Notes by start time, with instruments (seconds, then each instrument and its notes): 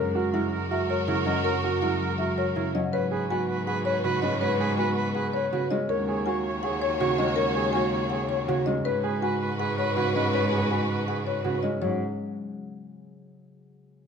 Already playing: cello F#2, harp G#3, string section F#4 A#4, marimba A#4, grand piano A#4
0.15 grand piano F#4, oboe A#4
0.33 harp G#3, grand piano E4, oboe A#4, marimba F#5
0.52 oboe A#4
0.70 grand piano F#4, oboe A#4, marimba E5
0.89 oboe A#4, grand piano A#4, marimba C#5
1.07 harp C#3, grand piano E4, oboe A#4
1.26 harp F#3, grand piano C#4, oboe A#4, marimba D#5
1.44 marimba A#4, grand piano A#4, oboe A#4
1.63 grand piano F#4, oboe A#4
1.82 harp G#3, grand piano E4, oboe A#4, marimba F#5
2.01 oboe A#4
2.18 grand piano F#4, oboe A#4, marimba E5
2.38 grand piano A#4, oboe A#4, marimba C#5
2.56 harp C#3, grand piano E4, oboe A#4
2.75 harp F#3, grand piano C#4, marimba D#5
2.93 cello G#2, string section F#4 B4, marimba B4, oboe B4, grand piano C#5
3.11 grand piano G#4, oboe B4
3.30 harp B3, grand piano F#4, oboe B4, marimba G#5
3.49 oboe B4
3.67 grand piano G#4, oboe B4, marimba F#5
3.85 oboe B4, marimba C#5, grand piano C#5
4.04 harp C#3, grand piano F#4, oboe B4
4.22 harp G#3, grand piano C#4, oboe B4, marimba D#5
4.40 oboe B4, marimba B4, grand piano C#5
4.59 grand piano G#4, oboe B4
4.78 harp B3, grand piano F#4, oboe B4, marimba G#5
4.97 oboe B4
5.15 grand piano G#4, oboe B4, marimba F#5
5.33 oboe B4, marimba C#5, grand piano C#5
5.52 harp C#3, grand piano F#4, oboe B4
5.71 harp G#3, grand piano C#4, marimba D#5
5.89 cello D#2, string section F#4 C#5, marimba A#4, oboe C#5, grand piano C#5
6.08 grand piano G#4, oboe C#5
6.26 harp A#3, grand piano F#4, oboe C#5, marimba G#5
6.46 oboe C#5
6.63 grand piano G#4, oboe C#5, marimba F#5
6.81 oboe C#5, marimba C#5
7.00 harp C#3, grand piano F#4, oboe C#5
7.18 harp G#3, grand piano C#4, oboe C#5, marimba D#5
7.36 marimba A#4, oboe C#5, grand piano C#5
7.55 grand piano G#4, oboe C#5
7.73 harp A#3, grand piano F#4, oboe C#5, marimba G#5
7.93 oboe C#5
8.10 grand piano G#4, oboe C#5, marimba F#5
8.29 marimba C#5, oboe C#5
8.48 harp C#3, grand piano F#4, oboe C#5
8.66 harp G#3, grand piano C#4, marimba D#5
8.85 cello G#2, string section F#4 B4, marimba B4, oboe B4, grand piano C#5
9.04 grand piano G#4, oboe B4
9.22 grand piano F#4, oboe B4, marimba G#5
9.40 oboe B4
9.59 grand piano G#4, oboe B4, marimba F#5
9.78 oboe B4, marimba C#5
9.96 harp C#3, grand piano F#4, oboe B4
10.15 harp G#3, grand piano C#4, oboe B4, marimba D#5
10.33 marimba B4, oboe B4, grand piano C#5
10.52 grand piano G#4, oboe B4
10.71 grand piano F#4, oboe B4, marimba G#5
10.89 oboe B4
11.08 grand piano G#4, oboe B4, marimba F#5
11.27 oboe B4, marimba C#5
11.44 harp C#3, grand piano F#4, oboe B4
11.63 harp G#3, grand piano C#4, marimba D#5
11.82 cello G#2, harp F#3, grand piano F#4, marimba C#5